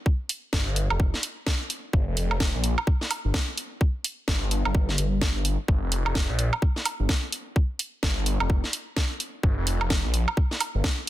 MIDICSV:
0, 0, Header, 1, 3, 480
1, 0, Start_track
1, 0, Key_signature, -2, "minor"
1, 0, Tempo, 468750
1, 61, Time_signature, 4, 2, 24, 8
1, 11360, End_track
2, 0, Start_track
2, 0, Title_t, "Detuned saw bass"
2, 0, Program_c, 0, 39
2, 541, Note_on_c, 0, 31, 96
2, 903, Note_off_c, 0, 31, 0
2, 926, Note_on_c, 0, 29, 97
2, 1143, Note_off_c, 0, 29, 0
2, 1980, Note_on_c, 0, 31, 96
2, 2102, Note_off_c, 0, 31, 0
2, 2125, Note_on_c, 0, 29, 96
2, 2582, Note_off_c, 0, 29, 0
2, 2605, Note_on_c, 0, 34, 100
2, 2823, Note_off_c, 0, 34, 0
2, 3326, Note_on_c, 0, 31, 98
2, 3406, Note_off_c, 0, 31, 0
2, 4380, Note_on_c, 0, 31, 94
2, 4742, Note_off_c, 0, 31, 0
2, 4764, Note_on_c, 0, 31, 97
2, 4845, Note_off_c, 0, 31, 0
2, 4860, Note_on_c, 0, 31, 94
2, 5085, Note_off_c, 0, 31, 0
2, 5101, Note_on_c, 0, 31, 98
2, 5463, Note_off_c, 0, 31, 0
2, 5486, Note_on_c, 0, 31, 96
2, 5703, Note_off_c, 0, 31, 0
2, 5820, Note_on_c, 0, 31, 96
2, 5942, Note_off_c, 0, 31, 0
2, 5965, Note_on_c, 0, 29, 95
2, 6422, Note_off_c, 0, 29, 0
2, 6445, Note_on_c, 0, 34, 98
2, 6662, Note_off_c, 0, 34, 0
2, 7165, Note_on_c, 0, 31, 94
2, 7245, Note_off_c, 0, 31, 0
2, 8220, Note_on_c, 0, 31, 98
2, 8583, Note_off_c, 0, 31, 0
2, 8605, Note_on_c, 0, 29, 95
2, 8822, Note_off_c, 0, 29, 0
2, 9660, Note_on_c, 0, 31, 97
2, 9782, Note_off_c, 0, 31, 0
2, 9803, Note_on_c, 0, 29, 97
2, 10262, Note_off_c, 0, 29, 0
2, 10284, Note_on_c, 0, 34, 102
2, 10502, Note_off_c, 0, 34, 0
2, 11005, Note_on_c, 0, 31, 95
2, 11085, Note_off_c, 0, 31, 0
2, 11360, End_track
3, 0, Start_track
3, 0, Title_t, "Drums"
3, 61, Note_on_c, 9, 36, 120
3, 163, Note_off_c, 9, 36, 0
3, 301, Note_on_c, 9, 46, 107
3, 403, Note_off_c, 9, 46, 0
3, 540, Note_on_c, 9, 38, 121
3, 541, Note_on_c, 9, 36, 122
3, 643, Note_off_c, 9, 36, 0
3, 643, Note_off_c, 9, 38, 0
3, 781, Note_on_c, 9, 46, 94
3, 883, Note_off_c, 9, 46, 0
3, 926, Note_on_c, 9, 76, 80
3, 1021, Note_on_c, 9, 36, 119
3, 1028, Note_off_c, 9, 76, 0
3, 1123, Note_off_c, 9, 36, 0
3, 1166, Note_on_c, 9, 38, 37
3, 1260, Note_on_c, 9, 46, 105
3, 1268, Note_off_c, 9, 38, 0
3, 1363, Note_off_c, 9, 46, 0
3, 1500, Note_on_c, 9, 38, 121
3, 1501, Note_on_c, 9, 36, 119
3, 1603, Note_off_c, 9, 36, 0
3, 1603, Note_off_c, 9, 38, 0
3, 1740, Note_on_c, 9, 46, 97
3, 1843, Note_off_c, 9, 46, 0
3, 1981, Note_on_c, 9, 36, 118
3, 2083, Note_off_c, 9, 36, 0
3, 2221, Note_on_c, 9, 46, 107
3, 2323, Note_off_c, 9, 46, 0
3, 2365, Note_on_c, 9, 76, 80
3, 2460, Note_on_c, 9, 36, 122
3, 2460, Note_on_c, 9, 38, 118
3, 2468, Note_off_c, 9, 76, 0
3, 2562, Note_off_c, 9, 38, 0
3, 2563, Note_off_c, 9, 36, 0
3, 2700, Note_on_c, 9, 46, 96
3, 2802, Note_off_c, 9, 46, 0
3, 2845, Note_on_c, 9, 76, 79
3, 2940, Note_on_c, 9, 36, 123
3, 2948, Note_off_c, 9, 76, 0
3, 3043, Note_off_c, 9, 36, 0
3, 3085, Note_on_c, 9, 38, 37
3, 3181, Note_on_c, 9, 46, 107
3, 3181, Note_on_c, 9, 76, 61
3, 3188, Note_off_c, 9, 38, 0
3, 3283, Note_off_c, 9, 46, 0
3, 3283, Note_off_c, 9, 76, 0
3, 3420, Note_on_c, 9, 36, 127
3, 3420, Note_on_c, 9, 38, 121
3, 3522, Note_off_c, 9, 38, 0
3, 3523, Note_off_c, 9, 36, 0
3, 3661, Note_on_c, 9, 46, 97
3, 3763, Note_off_c, 9, 46, 0
3, 3900, Note_on_c, 9, 36, 121
3, 4003, Note_off_c, 9, 36, 0
3, 4142, Note_on_c, 9, 46, 107
3, 4244, Note_off_c, 9, 46, 0
3, 4380, Note_on_c, 9, 36, 120
3, 4380, Note_on_c, 9, 38, 113
3, 4482, Note_off_c, 9, 38, 0
3, 4483, Note_off_c, 9, 36, 0
3, 4620, Note_on_c, 9, 46, 94
3, 4723, Note_off_c, 9, 46, 0
3, 4766, Note_on_c, 9, 76, 84
3, 4860, Note_on_c, 9, 36, 120
3, 4868, Note_off_c, 9, 76, 0
3, 4963, Note_off_c, 9, 36, 0
3, 5006, Note_on_c, 9, 38, 36
3, 5101, Note_on_c, 9, 46, 102
3, 5108, Note_off_c, 9, 38, 0
3, 5203, Note_off_c, 9, 46, 0
3, 5340, Note_on_c, 9, 36, 123
3, 5340, Note_on_c, 9, 38, 113
3, 5442, Note_off_c, 9, 38, 0
3, 5443, Note_off_c, 9, 36, 0
3, 5580, Note_on_c, 9, 46, 98
3, 5682, Note_off_c, 9, 46, 0
3, 5820, Note_on_c, 9, 36, 120
3, 5923, Note_off_c, 9, 36, 0
3, 6060, Note_on_c, 9, 46, 100
3, 6163, Note_off_c, 9, 46, 0
3, 6205, Note_on_c, 9, 76, 88
3, 6300, Note_on_c, 9, 36, 117
3, 6300, Note_on_c, 9, 38, 113
3, 6307, Note_off_c, 9, 76, 0
3, 6402, Note_off_c, 9, 38, 0
3, 6403, Note_off_c, 9, 36, 0
3, 6540, Note_on_c, 9, 46, 91
3, 6643, Note_off_c, 9, 46, 0
3, 6685, Note_on_c, 9, 76, 88
3, 6781, Note_on_c, 9, 36, 115
3, 6787, Note_off_c, 9, 76, 0
3, 6883, Note_off_c, 9, 36, 0
3, 6925, Note_on_c, 9, 38, 34
3, 7020, Note_on_c, 9, 46, 104
3, 7020, Note_on_c, 9, 76, 66
3, 7027, Note_off_c, 9, 38, 0
3, 7122, Note_off_c, 9, 46, 0
3, 7122, Note_off_c, 9, 76, 0
3, 7260, Note_on_c, 9, 38, 107
3, 7261, Note_on_c, 9, 36, 119
3, 7362, Note_off_c, 9, 38, 0
3, 7363, Note_off_c, 9, 36, 0
3, 7500, Note_on_c, 9, 46, 91
3, 7603, Note_off_c, 9, 46, 0
3, 7741, Note_on_c, 9, 36, 114
3, 7843, Note_off_c, 9, 36, 0
3, 7980, Note_on_c, 9, 46, 98
3, 8083, Note_off_c, 9, 46, 0
3, 8221, Note_on_c, 9, 36, 117
3, 8221, Note_on_c, 9, 38, 113
3, 8323, Note_off_c, 9, 36, 0
3, 8323, Note_off_c, 9, 38, 0
3, 8460, Note_on_c, 9, 46, 90
3, 8563, Note_off_c, 9, 46, 0
3, 8606, Note_on_c, 9, 76, 87
3, 8701, Note_on_c, 9, 36, 112
3, 8708, Note_off_c, 9, 76, 0
3, 8803, Note_off_c, 9, 36, 0
3, 8846, Note_on_c, 9, 38, 33
3, 8941, Note_on_c, 9, 46, 97
3, 8948, Note_off_c, 9, 38, 0
3, 9044, Note_off_c, 9, 46, 0
3, 9180, Note_on_c, 9, 38, 110
3, 9181, Note_on_c, 9, 36, 115
3, 9283, Note_off_c, 9, 36, 0
3, 9283, Note_off_c, 9, 38, 0
3, 9422, Note_on_c, 9, 46, 90
3, 9524, Note_off_c, 9, 46, 0
3, 9661, Note_on_c, 9, 36, 109
3, 9763, Note_off_c, 9, 36, 0
3, 9900, Note_on_c, 9, 46, 99
3, 10003, Note_off_c, 9, 46, 0
3, 10045, Note_on_c, 9, 76, 89
3, 10140, Note_on_c, 9, 38, 114
3, 10141, Note_on_c, 9, 36, 113
3, 10147, Note_off_c, 9, 76, 0
3, 10242, Note_off_c, 9, 38, 0
3, 10243, Note_off_c, 9, 36, 0
3, 10380, Note_on_c, 9, 46, 87
3, 10483, Note_off_c, 9, 46, 0
3, 10525, Note_on_c, 9, 76, 87
3, 10620, Note_on_c, 9, 36, 115
3, 10627, Note_off_c, 9, 76, 0
3, 10723, Note_off_c, 9, 36, 0
3, 10765, Note_on_c, 9, 38, 36
3, 10860, Note_on_c, 9, 46, 99
3, 10860, Note_on_c, 9, 76, 65
3, 10867, Note_off_c, 9, 38, 0
3, 10962, Note_off_c, 9, 46, 0
3, 10962, Note_off_c, 9, 76, 0
3, 11100, Note_on_c, 9, 36, 116
3, 11100, Note_on_c, 9, 38, 110
3, 11203, Note_off_c, 9, 36, 0
3, 11203, Note_off_c, 9, 38, 0
3, 11360, End_track
0, 0, End_of_file